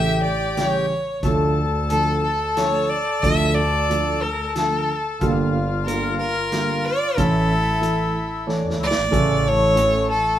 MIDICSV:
0, 0, Header, 1, 6, 480
1, 0, Start_track
1, 0, Tempo, 663717
1, 887, Time_signature, 3, 2, 24, 8
1, 4240, Tempo, 650759
1, 7579, End_track
2, 0, Start_track
2, 0, Title_t, "Violin"
2, 0, Program_c, 0, 40
2, 0, Note_on_c, 0, 76, 94
2, 146, Note_off_c, 0, 76, 0
2, 167, Note_on_c, 0, 74, 92
2, 395, Note_on_c, 0, 73, 86
2, 405, Note_off_c, 0, 74, 0
2, 883, Note_off_c, 0, 73, 0
2, 1369, Note_on_c, 0, 69, 96
2, 1593, Note_off_c, 0, 69, 0
2, 1615, Note_on_c, 0, 69, 83
2, 1865, Note_on_c, 0, 73, 94
2, 1875, Note_off_c, 0, 69, 0
2, 2092, Note_on_c, 0, 74, 93
2, 2103, Note_off_c, 0, 73, 0
2, 2330, Note_on_c, 0, 76, 102
2, 2341, Note_off_c, 0, 74, 0
2, 2562, Note_on_c, 0, 74, 98
2, 2572, Note_off_c, 0, 76, 0
2, 3053, Note_on_c, 0, 70, 82
2, 3063, Note_off_c, 0, 74, 0
2, 3289, Note_off_c, 0, 70, 0
2, 3294, Note_on_c, 0, 69, 75
2, 3738, Note_off_c, 0, 69, 0
2, 4231, Note_on_c, 0, 70, 81
2, 4460, Note_off_c, 0, 70, 0
2, 4478, Note_on_c, 0, 70, 101
2, 4967, Note_on_c, 0, 74, 103
2, 4978, Note_off_c, 0, 70, 0
2, 5205, Note_on_c, 0, 69, 96
2, 5216, Note_off_c, 0, 74, 0
2, 6167, Note_off_c, 0, 69, 0
2, 6432, Note_on_c, 0, 74, 97
2, 6907, Note_on_c, 0, 73, 106
2, 6918, Note_off_c, 0, 74, 0
2, 7363, Note_off_c, 0, 73, 0
2, 7368, Note_on_c, 0, 69, 95
2, 7579, Note_off_c, 0, 69, 0
2, 7579, End_track
3, 0, Start_track
3, 0, Title_t, "Accordion"
3, 0, Program_c, 1, 21
3, 0, Note_on_c, 1, 67, 122
3, 622, Note_off_c, 1, 67, 0
3, 896, Note_on_c, 1, 69, 111
3, 3764, Note_on_c, 1, 65, 98
3, 3855, Note_off_c, 1, 69, 0
3, 5210, Note_on_c, 1, 64, 97
3, 5250, Note_off_c, 1, 65, 0
3, 6167, Note_on_c, 1, 62, 71
3, 6198, Note_off_c, 1, 64, 0
3, 6390, Note_off_c, 1, 62, 0
3, 6400, Note_on_c, 1, 64, 75
3, 6509, Note_off_c, 1, 64, 0
3, 6640, Note_on_c, 1, 57, 97
3, 7579, Note_off_c, 1, 57, 0
3, 7579, End_track
4, 0, Start_track
4, 0, Title_t, "Upright piano"
4, 0, Program_c, 2, 0
4, 0, Note_on_c, 2, 49, 62
4, 0, Note_on_c, 2, 52, 59
4, 0, Note_on_c, 2, 57, 66
4, 164, Note_off_c, 2, 49, 0
4, 166, Note_off_c, 2, 52, 0
4, 166, Note_off_c, 2, 57, 0
4, 410, Note_on_c, 2, 49, 62
4, 413, Note_on_c, 2, 52, 55
4, 413, Note_on_c, 2, 55, 65
4, 649, Note_off_c, 2, 49, 0
4, 650, Note_off_c, 2, 52, 0
4, 650, Note_off_c, 2, 55, 0
4, 901, Note_on_c, 2, 57, 95
4, 904, Note_on_c, 2, 50, 78
4, 906, Note_on_c, 2, 53, 67
4, 1135, Note_off_c, 2, 57, 0
4, 1137, Note_off_c, 2, 50, 0
4, 1138, Note_off_c, 2, 53, 0
4, 1378, Note_on_c, 2, 50, 70
4, 1380, Note_on_c, 2, 53, 56
4, 1383, Note_on_c, 2, 57, 65
4, 1614, Note_off_c, 2, 50, 0
4, 1616, Note_off_c, 2, 53, 0
4, 1617, Note_off_c, 2, 57, 0
4, 1854, Note_on_c, 2, 50, 56
4, 1855, Note_on_c, 2, 53, 51
4, 1856, Note_on_c, 2, 57, 67
4, 2092, Note_off_c, 2, 50, 0
4, 2093, Note_off_c, 2, 53, 0
4, 2093, Note_off_c, 2, 57, 0
4, 2339, Note_on_c, 2, 50, 81
4, 2342, Note_on_c, 2, 53, 76
4, 2346, Note_on_c, 2, 57, 92
4, 2574, Note_off_c, 2, 50, 0
4, 2576, Note_off_c, 2, 53, 0
4, 2578, Note_off_c, 2, 57, 0
4, 2817, Note_on_c, 2, 50, 65
4, 2819, Note_on_c, 2, 53, 55
4, 2820, Note_on_c, 2, 57, 68
4, 3052, Note_off_c, 2, 50, 0
4, 3053, Note_off_c, 2, 53, 0
4, 3054, Note_off_c, 2, 57, 0
4, 3293, Note_on_c, 2, 50, 59
4, 3294, Note_on_c, 2, 53, 58
4, 3294, Note_on_c, 2, 57, 64
4, 3529, Note_off_c, 2, 50, 0
4, 3529, Note_off_c, 2, 53, 0
4, 3529, Note_off_c, 2, 57, 0
4, 3774, Note_on_c, 2, 55, 80
4, 3775, Note_on_c, 2, 50, 85
4, 3775, Note_on_c, 2, 58, 85
4, 4007, Note_off_c, 2, 55, 0
4, 4007, Note_off_c, 2, 58, 0
4, 4008, Note_off_c, 2, 50, 0
4, 4242, Note_on_c, 2, 55, 57
4, 4244, Note_on_c, 2, 58, 62
4, 4246, Note_on_c, 2, 50, 63
4, 4483, Note_off_c, 2, 55, 0
4, 4484, Note_off_c, 2, 58, 0
4, 4485, Note_off_c, 2, 50, 0
4, 4730, Note_on_c, 2, 55, 57
4, 4732, Note_on_c, 2, 50, 54
4, 4732, Note_on_c, 2, 58, 60
4, 4968, Note_off_c, 2, 55, 0
4, 4969, Note_off_c, 2, 50, 0
4, 4970, Note_off_c, 2, 58, 0
4, 5205, Note_on_c, 2, 61, 93
4, 5209, Note_on_c, 2, 57, 76
4, 5211, Note_on_c, 2, 52, 74
4, 5447, Note_off_c, 2, 61, 0
4, 5449, Note_off_c, 2, 57, 0
4, 5450, Note_off_c, 2, 52, 0
4, 5674, Note_on_c, 2, 52, 60
4, 5674, Note_on_c, 2, 57, 62
4, 5676, Note_on_c, 2, 64, 65
4, 5921, Note_off_c, 2, 52, 0
4, 5921, Note_off_c, 2, 57, 0
4, 5922, Note_off_c, 2, 64, 0
4, 6160, Note_on_c, 2, 57, 62
4, 6163, Note_on_c, 2, 73, 82
4, 6164, Note_on_c, 2, 52, 63
4, 6403, Note_off_c, 2, 57, 0
4, 6405, Note_off_c, 2, 52, 0
4, 6405, Note_off_c, 2, 73, 0
4, 6634, Note_on_c, 2, 49, 106
4, 6635, Note_on_c, 2, 57, 80
4, 6640, Note_on_c, 2, 52, 91
4, 6879, Note_off_c, 2, 49, 0
4, 6879, Note_off_c, 2, 57, 0
4, 6881, Note_off_c, 2, 52, 0
4, 7110, Note_on_c, 2, 52, 73
4, 7112, Note_on_c, 2, 61, 71
4, 7114, Note_on_c, 2, 57, 58
4, 7354, Note_off_c, 2, 52, 0
4, 7355, Note_off_c, 2, 61, 0
4, 7356, Note_off_c, 2, 57, 0
4, 7579, End_track
5, 0, Start_track
5, 0, Title_t, "Double bass"
5, 0, Program_c, 3, 43
5, 0, Note_on_c, 3, 33, 93
5, 308, Note_off_c, 3, 33, 0
5, 886, Note_on_c, 3, 38, 87
5, 1752, Note_off_c, 3, 38, 0
5, 2336, Note_on_c, 3, 38, 86
5, 3194, Note_off_c, 3, 38, 0
5, 3769, Note_on_c, 3, 31, 101
5, 4629, Note_off_c, 3, 31, 0
5, 5210, Note_on_c, 3, 33, 86
5, 5857, Note_off_c, 3, 33, 0
5, 6285, Note_on_c, 3, 40, 69
5, 6394, Note_off_c, 3, 40, 0
5, 6408, Note_on_c, 3, 37, 65
5, 6515, Note_off_c, 3, 37, 0
5, 6525, Note_on_c, 3, 33, 80
5, 6633, Note_off_c, 3, 33, 0
5, 6649, Note_on_c, 3, 33, 105
5, 7503, Note_off_c, 3, 33, 0
5, 7579, End_track
6, 0, Start_track
6, 0, Title_t, "Drums"
6, 413, Note_on_c, 9, 38, 56
6, 413, Note_on_c, 9, 42, 43
6, 485, Note_off_c, 9, 38, 0
6, 485, Note_off_c, 9, 42, 0
6, 888, Note_on_c, 9, 42, 38
6, 889, Note_on_c, 9, 36, 68
6, 961, Note_off_c, 9, 36, 0
6, 961, Note_off_c, 9, 42, 0
6, 1373, Note_on_c, 9, 42, 50
6, 1445, Note_off_c, 9, 42, 0
6, 1856, Note_on_c, 9, 38, 56
6, 1856, Note_on_c, 9, 42, 42
6, 1928, Note_off_c, 9, 38, 0
6, 1928, Note_off_c, 9, 42, 0
6, 2337, Note_on_c, 9, 36, 77
6, 2341, Note_on_c, 9, 42, 47
6, 2409, Note_off_c, 9, 36, 0
6, 2413, Note_off_c, 9, 42, 0
6, 2825, Note_on_c, 9, 42, 47
6, 2897, Note_off_c, 9, 42, 0
6, 3294, Note_on_c, 9, 38, 61
6, 3294, Note_on_c, 9, 42, 44
6, 3366, Note_off_c, 9, 38, 0
6, 3366, Note_off_c, 9, 42, 0
6, 3768, Note_on_c, 9, 42, 40
6, 3772, Note_on_c, 9, 36, 70
6, 3840, Note_off_c, 9, 42, 0
6, 3844, Note_off_c, 9, 36, 0
6, 4252, Note_on_c, 9, 42, 56
6, 4325, Note_off_c, 9, 42, 0
6, 4724, Note_on_c, 9, 38, 61
6, 4724, Note_on_c, 9, 42, 43
6, 4798, Note_off_c, 9, 38, 0
6, 4798, Note_off_c, 9, 42, 0
6, 5210, Note_on_c, 9, 42, 47
6, 5212, Note_on_c, 9, 36, 74
6, 5284, Note_off_c, 9, 42, 0
6, 5285, Note_off_c, 9, 36, 0
6, 5690, Note_on_c, 9, 42, 44
6, 5764, Note_off_c, 9, 42, 0
6, 6179, Note_on_c, 9, 38, 42
6, 6252, Note_off_c, 9, 38, 0
6, 6333, Note_on_c, 9, 38, 54
6, 6406, Note_off_c, 9, 38, 0
6, 6486, Note_on_c, 9, 38, 78
6, 6560, Note_off_c, 9, 38, 0
6, 6649, Note_on_c, 9, 36, 75
6, 6652, Note_on_c, 9, 42, 41
6, 6723, Note_off_c, 9, 36, 0
6, 6726, Note_off_c, 9, 42, 0
6, 7121, Note_on_c, 9, 42, 54
6, 7195, Note_off_c, 9, 42, 0
6, 7579, End_track
0, 0, End_of_file